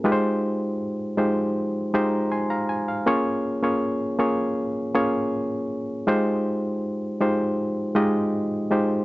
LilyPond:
\new Staff \with { instrumentName = "Reed electric piano" } { \time 4/4 \key f \minor \tempo 4 = 80 << { r2 r8 bes''8 <aes'' c'''>16 <f'' bes''>16 aes''16 f''16~ | f''16 r2. r8. | r1 | } \\ { <aes ees' f' g' ces'' c''>4 r8 <aes ees' f' g' c''>8 r8 <aes ees' f' g' c''>8 r4 | <bes des' f' aes' des''>8 r16 <bes des' f' aes' des''>8 r16 <bes des' f' aes' des''>8 r8 <bes des' f' aes' des''>4 r8 | <aes ees' f' g' c''>4 r8 <aes ees' f' g' c''>8 r8 <aes ees' f' g' ees''>8 r8 <aes ees' f' g' c''>16 r16 | } >> }